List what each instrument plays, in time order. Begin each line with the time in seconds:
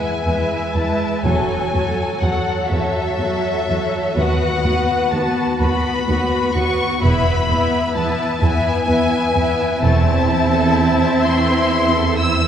Already playing: viola section G#3 E4, violin section B4 E5 G#5
0.25 cello section E2, viola section G#3 E4, violin section B4 E5
0.75 cello section E2, viola section G#3 E4, violin section B4 E5 A5
1.24 double bass section E1, cello section E2, viola section F#3 F#4, violin section A4 C#5 G#5
1.74 cello section E2, viola section F#3 F#4, violin section A4 C#5
2.21 cello section E2, viola section F#3 F#4, violin section A4 C#5 F#5
2.68 cello section E2, viola section F#3 F#4, violin section A4 C#5 E5
3.19 cello section E2, viola section F#3 F#4, violin section A4 C#5
3.68 cello section E2, viola section F#3 F#4, violin section A4 C#5
4.16 cello section D#2, double bass section D#2, viola section B3 F#4, violin section F#4 B4 F#5
4.64 cello section D#2, viola section B3 F#4, violin section F#4 B4
5.11 cello section D#2, viola section B3 F#4, violin section F#4 B4 A5
5.59 cello section D#2, viola section B3 F#4, violin section F#4 B4 B5
6.06 cello section D#2, viola section B3 F#4, violin section F#4 B4
6.54 cello section D#2, viola section B3 F#4, violin section F#4 B4 C#6
7.02 double bass section E1, cello section E2, viola section B3 E4, violin section B4 E5 B5
7.49 cello section E2, viola section B3 E4, violin section B4 E5
7.94 cello section E2, viola section B3 E4, violin section B4 E5 A5
8.41 cello section E2, viola section B3 E4, violin section B4 E5 G#5
8.87 cello section E2, viola section B3 E4, violin section B4 E5
9.35 cello section E2, viola section B3 E4, violin section B4 E5
9.82 double bass section E1, cello section E2, violin section A3 E5 A5, viola section C4 E4
10.07 violin section C4
10.29 violin section E4
10.54 violin section A4
10.78 violin section E4
11.01 violin section C4
11.25 cello section E2, violin section A3 C6
11.50 violin section C4
11.73 violin section E4
11.94 violin section A4
12.17 violin section E4 E6
12.40 violin section C4